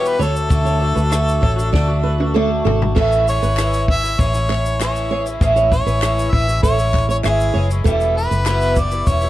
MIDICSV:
0, 0, Header, 1, 6, 480
1, 0, Start_track
1, 0, Key_signature, 3, "major"
1, 0, Tempo, 612245
1, 397, Time_signature, 4, 2, 24, 8
1, 7288, End_track
2, 0, Start_track
2, 0, Title_t, "Harmonica"
2, 0, Program_c, 0, 22
2, 62, Note_on_c, 0, 71, 85
2, 176, Note_on_c, 0, 69, 79
2, 188, Note_off_c, 0, 71, 0
2, 1848, Note_off_c, 0, 69, 0
2, 2579, Note_on_c, 0, 73, 85
2, 3018, Note_off_c, 0, 73, 0
2, 3060, Note_on_c, 0, 76, 104
2, 3295, Note_on_c, 0, 73, 90
2, 3307, Note_off_c, 0, 76, 0
2, 3767, Note_off_c, 0, 73, 0
2, 3779, Note_on_c, 0, 73, 73
2, 4104, Note_off_c, 0, 73, 0
2, 4487, Note_on_c, 0, 73, 97
2, 4953, Note_on_c, 0, 76, 102
2, 4965, Note_off_c, 0, 73, 0
2, 5193, Note_off_c, 0, 76, 0
2, 5198, Note_on_c, 0, 73, 99
2, 5532, Note_off_c, 0, 73, 0
2, 5572, Note_on_c, 0, 73, 84
2, 5623, Note_off_c, 0, 73, 0
2, 5696, Note_on_c, 0, 68, 73
2, 6021, Note_off_c, 0, 68, 0
2, 6408, Note_on_c, 0, 71, 87
2, 6887, Note_on_c, 0, 74, 90
2, 6899, Note_off_c, 0, 71, 0
2, 7116, Note_on_c, 0, 73, 99
2, 7128, Note_off_c, 0, 74, 0
2, 7288, Note_off_c, 0, 73, 0
2, 7288, End_track
3, 0, Start_track
3, 0, Title_t, "Nylon-string guitar"
3, 0, Program_c, 1, 24
3, 151, Note_on_c, 1, 73, 86
3, 267, Note_off_c, 1, 73, 0
3, 509, Note_on_c, 1, 73, 68
3, 627, Note_off_c, 1, 73, 0
3, 749, Note_on_c, 1, 71, 68
3, 867, Note_off_c, 1, 71, 0
3, 1112, Note_on_c, 1, 73, 67
3, 1343, Note_off_c, 1, 73, 0
3, 1354, Note_on_c, 1, 74, 85
3, 1584, Note_off_c, 1, 74, 0
3, 1595, Note_on_c, 1, 71, 76
3, 1711, Note_off_c, 1, 71, 0
3, 1837, Note_on_c, 1, 69, 77
3, 1952, Note_off_c, 1, 69, 0
3, 2077, Note_on_c, 1, 69, 83
3, 2192, Note_off_c, 1, 69, 0
3, 2319, Note_on_c, 1, 69, 89
3, 2547, Note_off_c, 1, 69, 0
3, 2686, Note_on_c, 1, 71, 78
3, 3021, Note_off_c, 1, 71, 0
3, 3522, Note_on_c, 1, 73, 92
3, 3634, Note_off_c, 1, 73, 0
3, 3763, Note_on_c, 1, 76, 67
3, 3875, Note_off_c, 1, 76, 0
3, 4005, Note_on_c, 1, 73, 80
3, 4116, Note_off_c, 1, 73, 0
3, 4360, Note_on_c, 1, 73, 69
3, 4473, Note_off_c, 1, 73, 0
3, 4597, Note_on_c, 1, 71, 68
3, 4936, Note_off_c, 1, 71, 0
3, 5197, Note_on_c, 1, 69, 77
3, 5311, Note_off_c, 1, 69, 0
3, 5556, Note_on_c, 1, 73, 67
3, 5669, Note_off_c, 1, 73, 0
3, 5672, Note_on_c, 1, 76, 84
3, 5788, Note_off_c, 1, 76, 0
3, 5908, Note_on_c, 1, 73, 84
3, 6026, Note_off_c, 1, 73, 0
3, 6148, Note_on_c, 1, 69, 102
3, 6379, Note_off_c, 1, 69, 0
3, 6514, Note_on_c, 1, 71, 75
3, 6852, Note_off_c, 1, 71, 0
3, 7288, End_track
4, 0, Start_track
4, 0, Title_t, "Twelve-string acoustic guitar"
4, 0, Program_c, 2, 25
4, 0, Note_on_c, 2, 40, 78
4, 0, Note_on_c, 2, 47, 75
4, 0, Note_on_c, 2, 52, 68
4, 0, Note_on_c, 2, 55, 71
4, 0, Note_on_c, 2, 59, 86
4, 0, Note_on_c, 2, 67, 90
4, 139, Note_off_c, 2, 52, 0
4, 142, Note_on_c, 2, 50, 51
4, 147, Note_off_c, 2, 55, 0
4, 149, Note_off_c, 2, 40, 0
4, 150, Note_on_c, 2, 57, 60
4, 151, Note_off_c, 2, 47, 0
4, 156, Note_off_c, 2, 59, 0
4, 159, Note_off_c, 2, 67, 0
4, 159, Note_on_c, 2, 62, 54
4, 166, Note_on_c, 2, 66, 60
4, 373, Note_off_c, 2, 50, 0
4, 378, Note_off_c, 2, 57, 0
4, 382, Note_on_c, 2, 50, 84
4, 385, Note_off_c, 2, 62, 0
4, 387, Note_on_c, 2, 57, 77
4, 390, Note_off_c, 2, 66, 0
4, 395, Note_on_c, 2, 62, 73
4, 399, Note_on_c, 2, 66, 82
4, 611, Note_off_c, 2, 50, 0
4, 617, Note_off_c, 2, 57, 0
4, 621, Note_on_c, 2, 50, 63
4, 625, Note_off_c, 2, 62, 0
4, 627, Note_on_c, 2, 57, 60
4, 631, Note_off_c, 2, 66, 0
4, 634, Note_on_c, 2, 62, 73
4, 641, Note_on_c, 2, 66, 67
4, 733, Note_off_c, 2, 66, 0
4, 742, Note_on_c, 2, 66, 54
4, 744, Note_off_c, 2, 62, 0
4, 749, Note_off_c, 2, 50, 0
4, 752, Note_off_c, 2, 57, 0
4, 753, Note_on_c, 2, 62, 49
4, 765, Note_on_c, 2, 57, 46
4, 856, Note_off_c, 2, 57, 0
4, 859, Note_on_c, 2, 50, 80
4, 862, Note_off_c, 2, 62, 0
4, 865, Note_on_c, 2, 57, 79
4, 867, Note_off_c, 2, 66, 0
4, 872, Note_on_c, 2, 62, 87
4, 876, Note_on_c, 2, 66, 92
4, 1093, Note_off_c, 2, 50, 0
4, 1101, Note_off_c, 2, 57, 0
4, 1103, Note_on_c, 2, 50, 65
4, 1108, Note_off_c, 2, 62, 0
4, 1111, Note_on_c, 2, 57, 60
4, 1117, Note_off_c, 2, 66, 0
4, 1117, Note_on_c, 2, 62, 61
4, 1127, Note_on_c, 2, 66, 69
4, 1213, Note_off_c, 2, 66, 0
4, 1222, Note_on_c, 2, 66, 56
4, 1228, Note_off_c, 2, 62, 0
4, 1230, Note_off_c, 2, 50, 0
4, 1234, Note_off_c, 2, 57, 0
4, 1238, Note_on_c, 2, 62, 56
4, 1246, Note_on_c, 2, 57, 50
4, 1346, Note_on_c, 2, 50, 67
4, 1350, Note_off_c, 2, 57, 0
4, 1350, Note_off_c, 2, 66, 0
4, 1358, Note_off_c, 2, 62, 0
4, 1359, Note_on_c, 2, 57, 69
4, 1368, Note_on_c, 2, 62, 72
4, 1375, Note_on_c, 2, 66, 80
4, 1459, Note_off_c, 2, 66, 0
4, 1469, Note_on_c, 2, 66, 62
4, 1472, Note_off_c, 2, 50, 0
4, 1476, Note_off_c, 2, 62, 0
4, 1479, Note_off_c, 2, 57, 0
4, 1485, Note_on_c, 2, 62, 56
4, 1494, Note_on_c, 2, 57, 56
4, 1701, Note_off_c, 2, 66, 0
4, 1710, Note_on_c, 2, 66, 57
4, 1714, Note_off_c, 2, 62, 0
4, 1724, Note_on_c, 2, 62, 49
4, 1726, Note_off_c, 2, 57, 0
4, 1736, Note_on_c, 2, 57, 46
4, 1831, Note_off_c, 2, 57, 0
4, 1834, Note_off_c, 2, 62, 0
4, 1834, Note_off_c, 2, 66, 0
4, 1834, Note_on_c, 2, 50, 86
4, 1840, Note_on_c, 2, 57, 81
4, 1843, Note_on_c, 2, 62, 95
4, 1847, Note_on_c, 2, 66, 94
4, 2061, Note_off_c, 2, 50, 0
4, 2066, Note_off_c, 2, 57, 0
4, 2070, Note_on_c, 2, 50, 61
4, 2075, Note_on_c, 2, 57, 60
4, 2076, Note_off_c, 2, 62, 0
4, 2083, Note_off_c, 2, 66, 0
4, 2085, Note_on_c, 2, 62, 65
4, 2092, Note_on_c, 2, 66, 71
4, 2310, Note_on_c, 2, 45, 81
4, 2314, Note_off_c, 2, 50, 0
4, 2317, Note_off_c, 2, 57, 0
4, 2317, Note_on_c, 2, 52, 78
4, 2322, Note_off_c, 2, 62, 0
4, 2324, Note_off_c, 2, 66, 0
4, 2325, Note_on_c, 2, 61, 89
4, 2328, Note_on_c, 2, 64, 97
4, 2547, Note_off_c, 2, 52, 0
4, 2555, Note_off_c, 2, 45, 0
4, 2557, Note_on_c, 2, 52, 59
4, 2562, Note_off_c, 2, 61, 0
4, 2563, Note_off_c, 2, 64, 0
4, 2566, Note_on_c, 2, 56, 64
4, 2572, Note_on_c, 2, 61, 69
4, 2577, Note_on_c, 2, 64, 71
4, 2798, Note_off_c, 2, 52, 0
4, 2802, Note_off_c, 2, 56, 0
4, 2805, Note_off_c, 2, 61, 0
4, 2808, Note_off_c, 2, 64, 0
4, 2808, Note_on_c, 2, 52, 71
4, 2812, Note_on_c, 2, 56, 78
4, 2816, Note_on_c, 2, 61, 78
4, 2821, Note_on_c, 2, 64, 78
4, 3030, Note_off_c, 2, 52, 0
4, 3039, Note_off_c, 2, 56, 0
4, 3039, Note_on_c, 2, 52, 57
4, 3042, Note_off_c, 2, 61, 0
4, 3049, Note_on_c, 2, 56, 59
4, 3050, Note_off_c, 2, 64, 0
4, 3051, Note_on_c, 2, 61, 59
4, 3062, Note_on_c, 2, 64, 61
4, 3149, Note_off_c, 2, 64, 0
4, 3159, Note_off_c, 2, 52, 0
4, 3159, Note_on_c, 2, 64, 59
4, 3161, Note_off_c, 2, 61, 0
4, 3164, Note_off_c, 2, 56, 0
4, 3171, Note_on_c, 2, 61, 48
4, 3179, Note_on_c, 2, 56, 43
4, 3277, Note_on_c, 2, 52, 62
4, 3279, Note_off_c, 2, 64, 0
4, 3280, Note_off_c, 2, 56, 0
4, 3285, Note_off_c, 2, 61, 0
4, 3289, Note_on_c, 2, 56, 66
4, 3294, Note_on_c, 2, 61, 65
4, 3304, Note_on_c, 2, 64, 74
4, 3389, Note_off_c, 2, 64, 0
4, 3398, Note_off_c, 2, 52, 0
4, 3398, Note_on_c, 2, 64, 57
4, 3399, Note_off_c, 2, 61, 0
4, 3404, Note_off_c, 2, 56, 0
4, 3409, Note_on_c, 2, 61, 50
4, 3419, Note_on_c, 2, 56, 45
4, 3758, Note_off_c, 2, 64, 0
4, 3764, Note_off_c, 2, 56, 0
4, 3764, Note_off_c, 2, 61, 0
4, 3765, Note_on_c, 2, 45, 74
4, 3768, Note_on_c, 2, 52, 73
4, 3774, Note_on_c, 2, 56, 73
4, 3779, Note_on_c, 2, 61, 75
4, 3782, Note_on_c, 2, 64, 73
4, 3997, Note_off_c, 2, 52, 0
4, 4002, Note_off_c, 2, 45, 0
4, 4006, Note_off_c, 2, 56, 0
4, 4006, Note_on_c, 2, 52, 57
4, 4009, Note_off_c, 2, 61, 0
4, 4010, Note_off_c, 2, 64, 0
4, 4015, Note_on_c, 2, 56, 62
4, 4021, Note_on_c, 2, 61, 54
4, 4029, Note_on_c, 2, 64, 57
4, 4112, Note_off_c, 2, 64, 0
4, 4121, Note_on_c, 2, 64, 50
4, 4122, Note_off_c, 2, 52, 0
4, 4124, Note_off_c, 2, 61, 0
4, 4127, Note_off_c, 2, 56, 0
4, 4133, Note_on_c, 2, 61, 42
4, 4144, Note_on_c, 2, 56, 44
4, 4240, Note_off_c, 2, 64, 0
4, 4241, Note_off_c, 2, 56, 0
4, 4243, Note_on_c, 2, 45, 87
4, 4246, Note_off_c, 2, 61, 0
4, 4247, Note_on_c, 2, 52, 91
4, 4251, Note_on_c, 2, 56, 98
4, 4257, Note_on_c, 2, 61, 99
4, 4261, Note_on_c, 2, 64, 101
4, 4466, Note_off_c, 2, 52, 0
4, 4474, Note_off_c, 2, 56, 0
4, 4475, Note_on_c, 2, 52, 54
4, 4481, Note_off_c, 2, 45, 0
4, 4483, Note_on_c, 2, 56, 65
4, 4484, Note_off_c, 2, 61, 0
4, 4489, Note_off_c, 2, 64, 0
4, 4493, Note_on_c, 2, 61, 61
4, 4499, Note_on_c, 2, 64, 67
4, 4710, Note_off_c, 2, 52, 0
4, 4711, Note_off_c, 2, 56, 0
4, 4713, Note_on_c, 2, 45, 79
4, 4717, Note_off_c, 2, 61, 0
4, 4719, Note_off_c, 2, 64, 0
4, 4719, Note_on_c, 2, 52, 72
4, 4720, Note_on_c, 2, 56, 80
4, 4726, Note_on_c, 2, 61, 84
4, 4728, Note_on_c, 2, 64, 89
4, 4940, Note_off_c, 2, 52, 0
4, 4950, Note_on_c, 2, 52, 61
4, 4952, Note_off_c, 2, 56, 0
4, 4955, Note_off_c, 2, 45, 0
4, 4960, Note_off_c, 2, 61, 0
4, 4961, Note_on_c, 2, 56, 57
4, 4963, Note_off_c, 2, 64, 0
4, 4969, Note_on_c, 2, 61, 63
4, 4976, Note_on_c, 2, 64, 57
4, 5066, Note_off_c, 2, 64, 0
4, 5073, Note_off_c, 2, 52, 0
4, 5075, Note_on_c, 2, 64, 56
4, 5078, Note_off_c, 2, 61, 0
4, 5079, Note_off_c, 2, 56, 0
4, 5087, Note_on_c, 2, 61, 52
4, 5094, Note_on_c, 2, 56, 41
4, 5188, Note_off_c, 2, 56, 0
4, 5190, Note_on_c, 2, 52, 61
4, 5196, Note_off_c, 2, 61, 0
4, 5196, Note_off_c, 2, 64, 0
4, 5198, Note_on_c, 2, 56, 65
4, 5206, Note_on_c, 2, 61, 67
4, 5213, Note_on_c, 2, 64, 78
4, 5298, Note_off_c, 2, 64, 0
4, 5308, Note_on_c, 2, 64, 57
4, 5313, Note_off_c, 2, 61, 0
4, 5314, Note_off_c, 2, 52, 0
4, 5317, Note_off_c, 2, 56, 0
4, 5322, Note_on_c, 2, 61, 53
4, 5332, Note_on_c, 2, 56, 47
4, 5666, Note_off_c, 2, 56, 0
4, 5672, Note_off_c, 2, 64, 0
4, 5673, Note_off_c, 2, 61, 0
4, 5673, Note_on_c, 2, 52, 83
4, 5676, Note_on_c, 2, 56, 69
4, 5683, Note_on_c, 2, 61, 75
4, 5686, Note_on_c, 2, 64, 88
4, 5902, Note_off_c, 2, 52, 0
4, 5911, Note_on_c, 2, 52, 60
4, 5912, Note_off_c, 2, 56, 0
4, 5919, Note_off_c, 2, 61, 0
4, 5921, Note_off_c, 2, 64, 0
4, 5922, Note_on_c, 2, 56, 60
4, 5929, Note_on_c, 2, 61, 55
4, 5937, Note_on_c, 2, 64, 65
4, 6029, Note_off_c, 2, 64, 0
4, 6034, Note_off_c, 2, 52, 0
4, 6038, Note_on_c, 2, 64, 49
4, 6039, Note_off_c, 2, 56, 0
4, 6042, Note_off_c, 2, 61, 0
4, 6050, Note_on_c, 2, 61, 48
4, 6059, Note_on_c, 2, 56, 46
4, 6157, Note_off_c, 2, 64, 0
4, 6157, Note_on_c, 2, 40, 94
4, 6159, Note_on_c, 2, 47, 80
4, 6160, Note_off_c, 2, 56, 0
4, 6163, Note_off_c, 2, 61, 0
4, 6163, Note_on_c, 2, 55, 94
4, 6164, Note_on_c, 2, 52, 92
4, 6167, Note_on_c, 2, 59, 99
4, 6174, Note_on_c, 2, 64, 96
4, 6384, Note_off_c, 2, 52, 0
4, 6393, Note_on_c, 2, 52, 57
4, 6395, Note_off_c, 2, 55, 0
4, 6396, Note_off_c, 2, 40, 0
4, 6397, Note_off_c, 2, 47, 0
4, 6401, Note_off_c, 2, 59, 0
4, 6404, Note_off_c, 2, 64, 0
4, 6405, Note_on_c, 2, 55, 64
4, 6410, Note_on_c, 2, 59, 62
4, 6417, Note_on_c, 2, 64, 71
4, 6634, Note_off_c, 2, 52, 0
4, 6636, Note_on_c, 2, 40, 74
4, 6637, Note_off_c, 2, 55, 0
4, 6640, Note_off_c, 2, 59, 0
4, 6641, Note_on_c, 2, 47, 85
4, 6643, Note_off_c, 2, 64, 0
4, 6646, Note_on_c, 2, 52, 81
4, 6647, Note_on_c, 2, 55, 81
4, 6649, Note_on_c, 2, 59, 91
4, 6652, Note_on_c, 2, 64, 87
4, 6860, Note_off_c, 2, 52, 0
4, 6869, Note_off_c, 2, 55, 0
4, 6869, Note_on_c, 2, 52, 55
4, 6875, Note_off_c, 2, 40, 0
4, 6877, Note_off_c, 2, 47, 0
4, 6877, Note_off_c, 2, 59, 0
4, 6878, Note_on_c, 2, 55, 57
4, 6883, Note_off_c, 2, 64, 0
4, 6886, Note_on_c, 2, 59, 66
4, 6893, Note_on_c, 2, 64, 54
4, 6980, Note_off_c, 2, 64, 0
4, 6986, Note_off_c, 2, 59, 0
4, 6989, Note_on_c, 2, 64, 56
4, 6992, Note_off_c, 2, 52, 0
4, 6996, Note_off_c, 2, 55, 0
4, 6996, Note_on_c, 2, 59, 45
4, 7006, Note_on_c, 2, 55, 52
4, 7009, Note_on_c, 2, 52, 49
4, 7101, Note_off_c, 2, 52, 0
4, 7110, Note_on_c, 2, 52, 59
4, 7111, Note_off_c, 2, 55, 0
4, 7112, Note_off_c, 2, 64, 0
4, 7115, Note_off_c, 2, 59, 0
4, 7120, Note_on_c, 2, 55, 65
4, 7126, Note_on_c, 2, 59, 62
4, 7137, Note_on_c, 2, 64, 69
4, 7217, Note_off_c, 2, 64, 0
4, 7226, Note_off_c, 2, 59, 0
4, 7226, Note_on_c, 2, 64, 60
4, 7232, Note_off_c, 2, 52, 0
4, 7236, Note_on_c, 2, 59, 53
4, 7237, Note_off_c, 2, 55, 0
4, 7246, Note_on_c, 2, 55, 53
4, 7252, Note_on_c, 2, 52, 44
4, 7288, Note_off_c, 2, 52, 0
4, 7288, Note_off_c, 2, 55, 0
4, 7288, Note_off_c, 2, 59, 0
4, 7288, Note_off_c, 2, 64, 0
4, 7288, End_track
5, 0, Start_track
5, 0, Title_t, "Fingered electric bass"
5, 0, Program_c, 3, 33
5, 0, Note_on_c, 3, 28, 86
5, 152, Note_off_c, 3, 28, 0
5, 152, Note_on_c, 3, 38, 96
5, 375, Note_off_c, 3, 38, 0
5, 397, Note_on_c, 3, 38, 98
5, 729, Note_off_c, 3, 38, 0
5, 756, Note_on_c, 3, 38, 84
5, 1088, Note_off_c, 3, 38, 0
5, 1121, Note_on_c, 3, 33, 83
5, 1341, Note_off_c, 3, 33, 0
5, 1362, Note_on_c, 3, 38, 88
5, 2049, Note_off_c, 3, 38, 0
5, 2080, Note_on_c, 3, 32, 81
5, 2300, Note_off_c, 3, 32, 0
5, 2326, Note_on_c, 3, 33, 97
5, 2654, Note_off_c, 3, 33, 0
5, 2684, Note_on_c, 3, 32, 83
5, 3251, Note_off_c, 3, 32, 0
5, 3285, Note_on_c, 3, 33, 92
5, 4210, Note_off_c, 3, 33, 0
5, 4244, Note_on_c, 3, 33, 111
5, 4572, Note_off_c, 3, 33, 0
5, 4596, Note_on_c, 3, 33, 76
5, 4928, Note_off_c, 3, 33, 0
5, 4962, Note_on_c, 3, 33, 87
5, 5181, Note_off_c, 3, 33, 0
5, 5202, Note_on_c, 3, 33, 100
5, 5648, Note_off_c, 3, 33, 0
5, 5679, Note_on_c, 3, 32, 89
5, 5898, Note_off_c, 3, 32, 0
5, 5919, Note_on_c, 3, 30, 85
5, 6138, Note_off_c, 3, 30, 0
5, 6160, Note_on_c, 3, 28, 105
5, 6488, Note_off_c, 3, 28, 0
5, 6516, Note_on_c, 3, 30, 90
5, 7085, Note_off_c, 3, 30, 0
5, 7110, Note_on_c, 3, 28, 97
5, 7288, Note_off_c, 3, 28, 0
5, 7288, End_track
6, 0, Start_track
6, 0, Title_t, "Drums"
6, 43, Note_on_c, 9, 82, 48
6, 122, Note_off_c, 9, 82, 0
6, 168, Note_on_c, 9, 82, 49
6, 247, Note_off_c, 9, 82, 0
6, 282, Note_on_c, 9, 82, 56
6, 361, Note_off_c, 9, 82, 0
6, 396, Note_on_c, 9, 36, 113
6, 398, Note_on_c, 9, 82, 76
6, 474, Note_off_c, 9, 36, 0
6, 476, Note_off_c, 9, 82, 0
6, 517, Note_on_c, 9, 82, 41
6, 595, Note_off_c, 9, 82, 0
6, 759, Note_on_c, 9, 82, 51
6, 837, Note_off_c, 9, 82, 0
6, 878, Note_on_c, 9, 82, 82
6, 881, Note_on_c, 9, 37, 120
6, 956, Note_off_c, 9, 82, 0
6, 959, Note_off_c, 9, 37, 0
6, 1006, Note_on_c, 9, 82, 52
6, 1085, Note_off_c, 9, 82, 0
6, 1121, Note_on_c, 9, 36, 84
6, 1200, Note_off_c, 9, 36, 0
6, 1248, Note_on_c, 9, 82, 56
6, 1326, Note_off_c, 9, 82, 0
6, 1362, Note_on_c, 9, 36, 91
6, 1366, Note_on_c, 9, 38, 49
6, 1441, Note_off_c, 9, 36, 0
6, 1444, Note_off_c, 9, 38, 0
6, 1726, Note_on_c, 9, 48, 65
6, 1804, Note_off_c, 9, 48, 0
6, 1850, Note_on_c, 9, 47, 86
6, 1929, Note_off_c, 9, 47, 0
6, 2090, Note_on_c, 9, 43, 95
6, 2169, Note_off_c, 9, 43, 0
6, 2211, Note_on_c, 9, 43, 82
6, 2289, Note_off_c, 9, 43, 0
6, 2325, Note_on_c, 9, 36, 115
6, 2332, Note_on_c, 9, 49, 91
6, 2403, Note_off_c, 9, 36, 0
6, 2410, Note_off_c, 9, 49, 0
6, 2448, Note_on_c, 9, 82, 44
6, 2526, Note_off_c, 9, 82, 0
6, 2571, Note_on_c, 9, 82, 58
6, 2649, Note_off_c, 9, 82, 0
6, 2690, Note_on_c, 9, 82, 49
6, 2769, Note_off_c, 9, 82, 0
6, 2801, Note_on_c, 9, 39, 82
6, 2806, Note_on_c, 9, 82, 82
6, 2809, Note_on_c, 9, 37, 107
6, 2879, Note_off_c, 9, 39, 0
6, 2885, Note_off_c, 9, 82, 0
6, 2887, Note_off_c, 9, 37, 0
6, 2927, Note_on_c, 9, 82, 50
6, 3005, Note_off_c, 9, 82, 0
6, 3045, Note_on_c, 9, 36, 82
6, 3123, Note_off_c, 9, 36, 0
6, 3173, Note_on_c, 9, 82, 51
6, 3177, Note_on_c, 9, 37, 29
6, 3252, Note_off_c, 9, 82, 0
6, 3255, Note_off_c, 9, 37, 0
6, 3285, Note_on_c, 9, 36, 91
6, 3291, Note_on_c, 9, 82, 62
6, 3364, Note_off_c, 9, 36, 0
6, 3369, Note_off_c, 9, 82, 0
6, 3402, Note_on_c, 9, 82, 51
6, 3480, Note_off_c, 9, 82, 0
6, 3528, Note_on_c, 9, 39, 73
6, 3607, Note_off_c, 9, 39, 0
6, 3649, Note_on_c, 9, 82, 56
6, 3727, Note_off_c, 9, 82, 0
6, 3766, Note_on_c, 9, 39, 63
6, 3766, Note_on_c, 9, 82, 67
6, 3773, Note_on_c, 9, 37, 102
6, 3844, Note_off_c, 9, 39, 0
6, 3845, Note_off_c, 9, 82, 0
6, 3852, Note_off_c, 9, 37, 0
6, 3886, Note_on_c, 9, 82, 55
6, 3964, Note_off_c, 9, 82, 0
6, 4125, Note_on_c, 9, 82, 52
6, 4203, Note_off_c, 9, 82, 0
6, 4243, Note_on_c, 9, 36, 123
6, 4246, Note_on_c, 9, 82, 72
6, 4321, Note_off_c, 9, 36, 0
6, 4324, Note_off_c, 9, 82, 0
6, 4363, Note_on_c, 9, 82, 45
6, 4442, Note_off_c, 9, 82, 0
6, 4482, Note_on_c, 9, 36, 83
6, 4488, Note_on_c, 9, 82, 57
6, 4561, Note_off_c, 9, 36, 0
6, 4567, Note_off_c, 9, 82, 0
6, 4605, Note_on_c, 9, 82, 49
6, 4684, Note_off_c, 9, 82, 0
6, 4719, Note_on_c, 9, 39, 85
6, 4723, Note_on_c, 9, 82, 84
6, 4726, Note_on_c, 9, 37, 114
6, 4797, Note_off_c, 9, 39, 0
6, 4801, Note_off_c, 9, 82, 0
6, 4804, Note_off_c, 9, 37, 0
6, 4851, Note_on_c, 9, 82, 51
6, 4930, Note_off_c, 9, 82, 0
6, 4962, Note_on_c, 9, 36, 81
6, 5040, Note_off_c, 9, 36, 0
6, 5086, Note_on_c, 9, 82, 57
6, 5164, Note_off_c, 9, 82, 0
6, 5201, Note_on_c, 9, 36, 88
6, 5206, Note_on_c, 9, 82, 65
6, 5279, Note_off_c, 9, 36, 0
6, 5284, Note_off_c, 9, 82, 0
6, 5322, Note_on_c, 9, 82, 48
6, 5401, Note_off_c, 9, 82, 0
6, 5440, Note_on_c, 9, 36, 78
6, 5443, Note_on_c, 9, 39, 77
6, 5519, Note_off_c, 9, 36, 0
6, 5521, Note_off_c, 9, 39, 0
6, 5567, Note_on_c, 9, 82, 50
6, 5645, Note_off_c, 9, 82, 0
6, 5680, Note_on_c, 9, 39, 70
6, 5681, Note_on_c, 9, 82, 67
6, 5688, Note_on_c, 9, 37, 105
6, 5759, Note_off_c, 9, 39, 0
6, 5759, Note_off_c, 9, 82, 0
6, 5766, Note_off_c, 9, 37, 0
6, 5804, Note_on_c, 9, 82, 53
6, 5883, Note_off_c, 9, 82, 0
6, 6041, Note_on_c, 9, 82, 54
6, 6120, Note_off_c, 9, 82, 0
6, 6158, Note_on_c, 9, 36, 117
6, 6163, Note_on_c, 9, 82, 82
6, 6237, Note_off_c, 9, 36, 0
6, 6242, Note_off_c, 9, 82, 0
6, 6276, Note_on_c, 9, 82, 44
6, 6354, Note_off_c, 9, 82, 0
6, 6521, Note_on_c, 9, 82, 51
6, 6600, Note_off_c, 9, 82, 0
6, 6632, Note_on_c, 9, 82, 81
6, 6633, Note_on_c, 9, 39, 79
6, 6634, Note_on_c, 9, 37, 115
6, 6710, Note_off_c, 9, 82, 0
6, 6711, Note_off_c, 9, 39, 0
6, 6713, Note_off_c, 9, 37, 0
6, 6752, Note_on_c, 9, 82, 55
6, 6831, Note_off_c, 9, 82, 0
6, 6866, Note_on_c, 9, 82, 59
6, 6873, Note_on_c, 9, 36, 80
6, 6944, Note_off_c, 9, 82, 0
6, 6951, Note_off_c, 9, 36, 0
6, 6987, Note_on_c, 9, 82, 56
6, 7065, Note_off_c, 9, 82, 0
6, 7108, Note_on_c, 9, 82, 63
6, 7110, Note_on_c, 9, 36, 86
6, 7186, Note_off_c, 9, 82, 0
6, 7189, Note_off_c, 9, 36, 0
6, 7222, Note_on_c, 9, 82, 47
6, 7288, Note_off_c, 9, 82, 0
6, 7288, End_track
0, 0, End_of_file